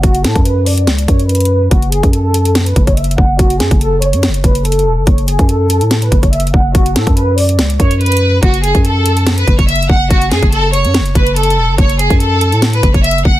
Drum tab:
HH |x-----x-----x-----x-----x-----------o-----x-----x-----x-----x-----x-----x--x--x--x--------------|x-----x-----x-----x-----x-----------x-----x-----x-----x-----x-----x-----x---x---x---------------|x-----x-----x-----x-----x-----------x-----x-----x-----x-----x-----x-----x---x---x---------------|x-----x-----x-----x-----x-----------x-----x-----x-----x-----x-----x-----x---x---x---------------|
SD |------------o-----------------------------------o-----------------------------------------------|------------------------------------------------o-----------------------------------------------|------------o-----------------------------------o-----------------------------------------------|------------------------------------------------o-----------------------------------------------|
BD |o-----------------o-----------------------------------------o-----------------------------------|o-----------------o-----------------------------------------o-----o-----------------o-----------|o-----------------o-----------------------------------------o-----------------------------------|o-----------------o-----------------------------------------o-----o-----------------o-----------|

HH |x-----x-----x-----x-----x-----------o-----x-----x-----x-----x-----x-----x--x--x--x--------------|x-----x-----x-----x-----x-----------x-----x-----x-----x-----x-----x-----x---x---x---------------|x-----x-----x-----x-----x-----------x-----x-----x-----x-----x-----x-----x---x---x---------------|x-----x-----x-----x-----x-----------x-----x-----x-----x-----x-----x-----x---x---x---------------|
SD |------------o-----------------------------------o-----------------------------------------------|------------------------------------------------o-----------------------------------------------|------------o-----------------------------------o-----------------------------------------------|------------------------------------------------o-----------------------------------------------|
BD |o-----------------o-----------------------------------------o-----------------------------------|o-----------------o-----------------------------------------o-----o-----------------o-----------|o-----------------o-----------------------------------------o-----------------------------------|o-----------------o-----------------------------------------o-----o-----------------o-----------|